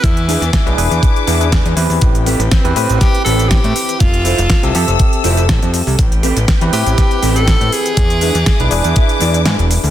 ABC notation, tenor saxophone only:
X:1
M:4/4
L:1/16
Q:"Swing 16ths" 1/4=121
K:Am
V:1 name="Tenor saxophone"
E6 z8 z2 | z4 C4 G2 A2 G4 | F8 z8 | z6 G4- G A3 ^G2- |
^G8- G2 z6 |]